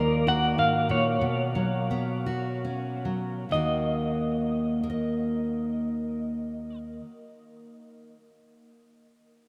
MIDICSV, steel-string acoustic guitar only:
0, 0, Header, 1, 2, 480
1, 0, Start_track
1, 0, Key_signature, -6, "minor"
1, 0, Tempo, 626959
1, 921, Time_signature, 3, 2, 24, 8
1, 921, Tempo, 688073
1, 1401, Tempo, 752823
1, 1881, Tempo, 845070
1, 2361, Tempo, 895522
1, 5574, End_track
2, 0, Start_track
2, 0, Title_t, "Steel-string acoustic guitar"
2, 0, Program_c, 0, 25
2, 0, Note_on_c, 0, 39, 55
2, 0, Note_on_c, 0, 51, 50
2, 0, Note_on_c, 0, 58, 42
2, 207, Note_on_c, 0, 66, 45
2, 433, Note_off_c, 0, 39, 0
2, 445, Note_on_c, 0, 44, 45
2, 680, Note_off_c, 0, 44, 0
2, 683, Note_on_c, 0, 46, 49
2, 899, Note_off_c, 0, 58, 0
2, 926, Note_off_c, 0, 46, 0
2, 927, Note_off_c, 0, 51, 0
2, 928, Note_on_c, 0, 47, 51
2, 1164, Note_on_c, 0, 54, 44
2, 1411, Note_on_c, 0, 59, 40
2, 1636, Note_off_c, 0, 66, 0
2, 1638, Note_on_c, 0, 66, 42
2, 1882, Note_on_c, 0, 61, 39
2, 2105, Note_off_c, 0, 54, 0
2, 2112, Note_on_c, 0, 54, 39
2, 2330, Note_off_c, 0, 54, 0
2, 2331, Note_off_c, 0, 61, 0
2, 2332, Note_off_c, 0, 66, 0
2, 2334, Note_off_c, 0, 47, 0
2, 2335, Note_off_c, 0, 59, 0
2, 2362, Note_on_c, 0, 39, 36
2, 2373, Note_on_c, 0, 51, 36
2, 2386, Note_on_c, 0, 58, 35
2, 2396, Note_on_c, 0, 66, 34
2, 3082, Note_on_c, 0, 70, 43
2, 3114, Note_off_c, 0, 66, 0
2, 3116, Note_on_c, 0, 75, 39
2, 4238, Note_off_c, 0, 39, 0
2, 4249, Note_off_c, 0, 51, 0
2, 4262, Note_off_c, 0, 58, 0
2, 4851, Note_off_c, 0, 70, 0
2, 4885, Note_off_c, 0, 75, 0
2, 5574, End_track
0, 0, End_of_file